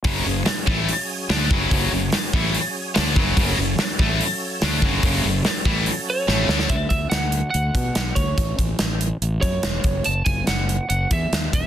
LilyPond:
<<
  \new Staff \with { instrumentName = "Lead electric guitar" } { \time 4/4 \key fis \minor \tempo 4 = 144 r1 | r1 | r1 | r2 r8 cis''4. |
e''8 e''8 fis''4 fis''4. cis''8~ | cis''8 r2 cis''4. | a''8 gis''8 fis''4 fis''8 e''4 e''8 | }
  \new Staff \with { instrumentName = "Tonewheel organ" } { \time 4/4 \key fis \minor gis'1~ | gis'1 | a'1~ | a'1 |
r1 | r1 | r1 | }
  \new Staff \with { instrumentName = "Tonewheel organ" } { \time 4/4 \key fis \minor <fis cis'>1~ | <fis cis'>1~ | <fis cis'>1~ | <fis cis'>1 |
r1 | r1 | r1 | }
  \new Staff \with { instrumentName = "Distorted electric guitar" } { \clef bass \time 4/4 \key fis \minor <fis, cis fis>8 <fis, cis>8 r8 <a, e a>8 r4 <d a d'>8 <fis, cis fis>8 | <fis, cis fis>8 <fis, cis>8 r8 <a, e a>8 r4 <d a d'>8 <fis, cis fis>8 | <fis, cis fis>8 <fis, cis>8 r8 <a, e a>8 r4 <d a d'>8 <fis, cis fis>8 | <fis, cis fis>8 <fis, cis>8 r8 <a, e a>8 r4 <a, e a>8 <d a d'>8 |
r1 | r1 | r1 | }
  \new Staff \with { instrumentName = "Fingered electric bass" } { \clef bass \time 4/4 \key fis \minor fis,,8 fis,,8 r8 a,,8 r4 d,8 fis,,8 | fis,,8 fis,,8 r8 a,,8 r4 d,8 fis,,8 | fis,,8 fis,,8 r8 a,,8 r4 d,8 fis,,8 | fis,,8 fis,,8 r8 a,,8 r4 a,,8 d,8 |
d,8 d,8 d,4 d,8 b,8 b,,8 d,8 | a,,8 a,,8 a,,4 a,,8 fis,8 e,,8 fis,,8 | fis,,8 fis,,8 fis,,4 fis,,8 e,8 dis,8 e,,8 | }
  \new DrumStaff \with { instrumentName = "Drums" } \drummode { \time 4/4 <hho bd>4 <hho sn>8 bd8 hho4 <hho sn>8 bd8 | <hho bd>4 <hho sn>8 bd8 hho4 <hho sn>8 bd8 | <hho bd>4 <hho sn>8 bd8 hho4 <hho sn>8 bd8 | <hho bd>4 <hho sn>8 bd8 hho4 sn8 sn16 sn16 |
<hh bd>8 <hh bd>8 <hh sn>8 hh8 hh8 <hh bd>8 <hh sn>8 <hh bd>8 | <hh bd>8 <hh bd>8 <hh sn>8 hh8 hh8 <hh bd>8 <hh sn>8 <hh bd>8 | hh8 <hh bd>8 <hh sn>8 hh8 hh8 <hh bd>8 <hh sn>8 <hh bd>8 | }
>>